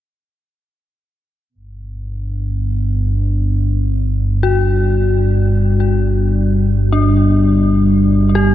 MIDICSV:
0, 0, Header, 1, 4, 480
1, 0, Start_track
1, 0, Key_signature, 1, "major"
1, 0, Tempo, 500000
1, 8204, End_track
2, 0, Start_track
2, 0, Title_t, "Synth bell"
2, 0, Program_c, 0, 98
2, 1617, Control_c, 0, 64, 127
2, 4254, Note_on_c, 0, 66, 51
2, 6648, Note_on_c, 0, 62, 47
2, 8018, Note_on_c, 0, 67, 65
2, 8204, Note_off_c, 0, 62, 0
2, 8204, Note_off_c, 0, 66, 0
2, 8204, Note_off_c, 0, 67, 0
2, 8204, End_track
3, 0, Start_track
3, 0, Title_t, "Ambient pad"
3, 0, Program_c, 1, 92
3, 1436, Note_on_c, 1, 59, 71
3, 1704, Note_on_c, 1, 62, 53
3, 3614, Note_on_c, 1, 55, 64
3, 4018, Note_on_c, 1, 74, 72
3, 8204, Note_off_c, 1, 55, 0
3, 8204, Note_off_c, 1, 59, 0
3, 8204, Note_off_c, 1, 62, 0
3, 8204, Note_off_c, 1, 74, 0
3, 8204, End_track
4, 0, Start_track
4, 0, Title_t, "Synth drone"
4, 0, Program_c, 2, 95
4, 1481, Note_on_c, 2, 43, 71
4, 1492, Note_on_c, 2, 31, 78
4, 8204, Note_off_c, 2, 31, 0
4, 8204, Note_off_c, 2, 43, 0
4, 8204, End_track
0, 0, End_of_file